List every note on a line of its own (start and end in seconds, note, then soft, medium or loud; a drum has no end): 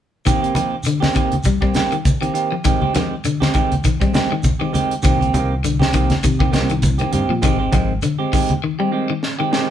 0.26 0.42 D#3 medium
0.26 0.50 D#3 medium
0.26 0.42 A#3 medium
0.26 0.41 C4 medium
0.26 0.41 G4 medium
0.26 kick medium
0.26 closed hi-hat medium
0.26 shekere medium
0.42 0.54 A#3 soft
0.42 0.54 C4 soft
0.42 0.54 G4 medium
0.42 closed hi-hat soft
0.55 0.75 D#3 soft
0.55 0.80 F3 medium
0.55 0.75 A#3 medium
0.55 0.75 C4 medium
0.55 0.75 G4 medium
0.55 closed hi-hat soft
0.55 high conga medium
0.55 shekere soft
0.83 1.10 D3 medium
0.83 closed hi-hat medium
0.83 shekere medium
1.00 1.14 A#3 soft
1.00 1.14 C4 soft
1.00 1.14 G4 medium
1.00 snare medium
1.00 high conga medium
1.13 1.34 D#3 soft
1.13 1.40 D#3 medium
1.13 1.35 A#3 medium
1.13 1.35 C4 medium
1.13 1.35 G4 medium
1.13 kick medium
1.13 closed hi-hat soft
1.13 shekere soft
1.32 closed hi-hat soft
1.32 high conga medium
1.44 1.59 G3 medium
1.44 kick medium
1.44 closed hi-hat medium
1.44 shekere medium
1.61 1.86 G3 medium
1.61 1.74 A#3 soft
1.61 1.74 C4 soft
1.61 1.75 G4 medium
1.61 kick medium
1.74 1.95 D#3 medium
1.74 1.95 A#3 soft
1.74 1.95 C4 medium
1.74 1.95 G4 medium
1.74 snare medium
1.74 closed hi-hat soft
1.74 high conga medium
1.74 shekere soft
1.92 2.16 D#3 medium
1.92 closed hi-hat soft
2.05 kick medium
2.05 closed hi-hat medium
2.05 high conga medium
2.05 shekere medium
2.21 2.46 D#3 medium
2.21 2.33 A#3 soft
2.21 2.33 C4 soft
2.21 2.33 G4 medium
2.21 closed hi-hat soft
2.34 2.54 D#3 medium
2.34 2.54 A#3 medium
2.34 2.54 C4 medium
2.34 2.54 G4 medium
2.34 closed hi-hat soft
2.34 shekere soft
2.52 2.63 F3 medium
2.65 2.81 D#3 medium
2.65 2.89 D#3 medium
2.65 2.81 G#3 medium
2.65 2.81 C4 medium
2.65 2.80 G4 medium
2.65 kick medium
2.65 closed hi-hat medium
2.65 shekere medium
2.81 2.93 G#3 soft
2.81 2.93 C4 medium
2.81 2.93 G4 medium
2.81 high conga medium
2.93 3.14 D#3 medium
2.93 3.19 F3 medium
2.93 3.14 G#3 medium
2.93 3.14 C4 medium
2.93 3.14 G4 medium
2.93 snare soft
2.93 closed hi-hat soft
2.93 high conga medium
2.93 shekere soft
3.25 3.49 D3 medium
3.25 closed hi-hat medium
3.25 shekere medium
3.40 3.53 G#3 soft
3.40 3.53 C4 medium
3.40 3.53 G4 medium
3.40 snare medium
3.40 high conga medium
3.53 3.73 D#3 medium
3.53 3.79 D#3 medium
3.53 3.74 G#3 medium
3.53 3.74 C4 medium
3.53 3.74 G4 medium
3.53 kick medium
3.53 closed hi-hat soft
3.53 shekere soft
3.72 closed hi-hat soft
3.72 high conga medium
3.84 3.98 D#3 medium
3.84 kick medium
3.84 closed hi-hat medium
3.84 shekere medium
4.00 4.25 G3 medium
4.00 4.12 G#3 soft
4.00 4.13 C4 soft
4.00 kick medium
4.00 closed hi-hat soft
4.13 4.33 D#3 medium
4.13 4.33 G#3 medium
4.13 4.33 C4 medium
4.13 4.34 G4 medium
4.13 snare medium
4.13 closed hi-hat soft
4.13 high conga medium
4.13 shekere soft
4.32 4.56 D#3 medium
4.43 kick medium
4.43 closed hi-hat soft
4.43 high conga medium
4.43 shekere medium
4.59 4.85 D#3 medium
4.59 4.72 G#3 soft
4.59 4.73 C4 soft
4.59 4.73 G4 medium
4.73 4.93 D#3 medium
4.73 4.93 G#3 medium
4.73 4.93 C4 medium
4.73 4.94 G4 medium
4.73 closed hi-hat soft
4.73 high conga medium
4.73 shekere soft
4.91 closed hi-hat soft
5.03 5.29 C2 medium
5.03 5.20 D#3 medium
5.03 5.29 D#3 medium
5.03 5.20 A#3 medium
5.03 5.19 C4 medium
5.03 5.18 G4 medium
5.03 kick medium
5.03 closed hi-hat medium
5.03 shekere medium
5.20 5.33 A#3 soft
5.20 5.33 C4 soft
5.20 5.33 G4 medium
5.20 closed hi-hat soft
5.20 high conga medium
5.33 6.09 C2 medium
5.33 5.53 D#3 medium
5.33 5.53 A#3 medium
5.33 5.54 C4 medium
5.33 5.54 G4 medium
5.33 closed hi-hat soft
5.33 high conga medium
5.33 shekere soft
5.64 5.88 D3 medium
5.64 closed hi-hat medium
5.64 shekere medium
5.79 5.93 C4 medium
5.79 5.93 G4 medium
5.79 snare medium
5.79 high conga medium
5.93 6.13 D#3 medium
5.93 6.18 D#3 medium
5.93 6.13 A#3 medium
5.93 6.13 C4 medium
5.93 6.14 G4 medium
5.93 kick medium
5.93 closed hi-hat soft
5.93 shekere soft
6.10 snare soft
6.10 closed hi-hat soft
6.10 high conga medium
6.23 6.56 C3 medium
6.23 6.37 D#3 medium
6.23 kick medium
6.23 closed hi-hat medium
6.23 shekere medium
6.39 6.65 D#3 medium
6.39 6.51 A#3 soft
6.39 6.51 C4 soft
6.39 6.52 G4 medium
6.39 kick medium
6.39 high conga medium
6.51 7.04 C2 medium
6.51 6.72 D#3 medium
6.51 6.72 A#3 medium
6.51 6.72 C4 medium
6.51 6.73 G4 medium
6.51 snare medium
6.51 closed hi-hat soft
6.51 high conga medium
6.51 shekere soft
6.70 6.95 D#3 medium
6.70 closed hi-hat soft
6.82 kick medium
6.82 closed hi-hat medium
6.82 high conga medium
6.82 shekere medium
6.98 7.25 D#3 medium
6.98 7.11 A#3 soft
6.98 7.12 C4 soft
6.98 7.12 G4 medium
6.98 closed hi-hat soft
7.12 7.27 G2 medium
7.12 7.32 D#3 medium
7.12 7.32 A#3 medium
7.12 7.33 C4 medium
7.12 7.33 G4 medium
7.12 closed hi-hat soft
7.12 high conga medium
7.12 shekere soft
7.29 7.41 A#2 medium
7.29 7.41 F3 medium
7.42 7.68 G#1 medium
7.42 7.59 D#3 medium
7.42 7.68 D#3 medium
7.42 7.59 G#3 medium
7.42 7.58 C4 medium
7.42 7.57 G4 medium
7.42 kick medium
7.42 closed hi-hat medium
7.42 shekere medium
7.59 7.71 G#3 soft
7.59 7.71 C4 medium
7.59 7.73 G4 medium
7.72 7.99 G#1 medium
7.72 7.92 D#3 medium
7.72 7.98 F3 medium
7.72 7.92 G#3 medium
7.72 7.92 C4 medium
7.72 kick medium
7.72 closed hi-hat soft
7.72 high conga medium
7.72 shekere soft
8.02 8.27 D3 medium
8.02 closed hi-hat medium
8.02 shekere medium
8.19 8.32 G#3 soft
8.19 8.32 C4 medium
8.19 8.32 G4 medium
8.32 8.52 D#3 medium
8.32 8.57 D#3 medium
8.32 8.53 G#3 medium
8.32 8.53 C4 medium
8.32 8.53 G4 medium
8.32 kick medium
8.32 open hi-hat medium
8.32 shekere soft
8.49 closed hi-hat soft
8.49 high conga medium
8.64 8.77 D#3 medium
8.79 9.04 G3 medium
8.79 8.91 G#3 soft
8.79 8.91 C4 medium
8.79 8.91 G4 medium
8.91 9.12 D#3 medium
8.91 9.12 G#3 medium
8.91 9.12 C4 medium
8.91 9.12 G4 medium
9.10 9.34 D#3 medium
9.23 snare soft
9.39 9.64 D#3 medium
9.39 9.51 G#3 soft
9.39 9.51 C4 soft
9.39 9.52 G4 medium
9.51 9.70 D#3 medium
9.51 9.70 G#3 medium
9.51 9.70 C4 medium
9.51 9.70 G4 medium
9.51 snare medium